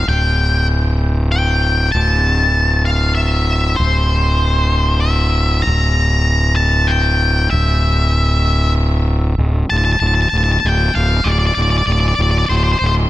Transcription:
0.08 fingered electric bass D1, lead electric guitar G5
1.32 lead electric guitar G5
1.92 fingered electric bass D1, lead electric guitar A5
2.85 lead electric guitar F5
3.15 lead electric guitar E5
3.76 fingered electric bass D1, lead electric guitar C5
5.00 lead electric guitar E5
5.62 lead electric guitar A#5
5.67 fingered electric bass D1
6.56 lead electric guitar A5
6.87 lead electric guitar G5
7.50 fingered electric bass D1, lead electric guitar E5
9.38 fingered electric bass D1
9.70 fingered electric bass D1, lead electric guitar A5
9.77 lead electric guitar A5
9.85 lead electric guitar A5
9.92 lead electric guitar A5
10.00 fingered electric bass D1, lead electric guitar A5
10.07 lead electric guitar A5
10.15 lead electric guitar A5
10.22 lead electric guitar A5
10.29 fingered electric bass D1, lead electric guitar A5
10.37 lead electric guitar A5
10.44 lead electric guitar A5
10.52 lead electric guitar A5
10.60 lead electric guitar A5
10.64 fingered electric bass D1, lead electric guitar G5
10.95 fingered electric bass D1, lead electric guitar F5
11.24 fingered electric bass D1, lead electric guitar D5
11.32 lead electric guitar D5
11.39 lead electric guitar D5
11.46 lead electric guitar D5
11.55 fingered electric bass D1, lead electric guitar D5
11.62 lead electric guitar D5
11.70 lead electric guitar D5
11.78 lead electric guitar D5
11.87 fingered electric bass D1, lead electric guitar D5
11.92 lead electric guitar D5
12.00 lead electric guitar D5
12.08 lead electric guitar D5
12.15 fingered electric bass D1, lead electric guitar D5
12.22 lead electric guitar D5
12.31 lead electric guitar D5
12.38 lead electric guitar D5
12.46 fingered electric bass D1, lead electric guitar C5 D5
12.57 lead electric guitar C5
12.64 lead electric guitar C5
12.72 lead electric guitar C5
12.79 fingered electric bass D1, lead electric guitar C5
12.86 lead electric guitar C5

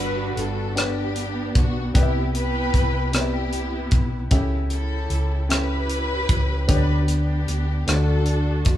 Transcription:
Already playing: fingered electric bass G1, grand piano G2 G3 D4 B4 F#5, string section D4 F#4 B4
0.37 fingered electric bass G1, string section A4, closed hi-hat
0.76 string section B3 D4 G4, grand piano D4 G4 B4 D5, cross-stick, closed hi-hat
1.16 closed hi-hat
1.55 fingered electric bass B1, string section F#4, kick, closed hi-hat
1.94 fingered electric bass C2, grand piano C3 B3 G4 B4 D5, string section B3 E4 G4, kick, closed hi-hat
2.03 grand piano E5
2.35 string section E4 G4 B4, closed hi-hat
2.74 fingered electric bass C2, kick, closed hi-hat
3.13 grand piano C3 G4 B4 D5, string section B3 E4 G4, cross-stick, closed hi-hat
3.21 grand piano E5
3.53 closed hi-hat
3.91 fingered electric bass B1, kick, closed hi-hat
4.31 fingered electric bass C#2, grand piano C#3 C#4 G4 A4 E5, string section E4 G4, kick, closed hi-hat
4.70 string section E4 A4, closed hi-hat
5.10 fingered electric bass C#2, closed hi-hat
5.49 grand piano C#4 G4 A4 E5, string section E4 G4 B4, cross-stick, closed hi-hat
5.89 closed hi-hat
6.29 fingered electric bass C#2, kick, closed hi-hat
6.68 fingered electric bass D2, grand piano D3 B3 D4 G4 C#5, string section D4 G4 B4, kick, closed hi-hat
6.76 grand piano D5
7.08 string section B3 D4 G4, closed hi-hat
7.48 fingered electric bass D2, closed hi-hat
7.87 fingered electric bass D2, grand piano D3 A3 D4 F#4 C5, string section D4 F#4 A4, cross-stick, closed hi-hat
7.96 grand piano D5
8.26 closed hi-hat
8.65 fingered electric bass F#1, kick, closed hi-hat

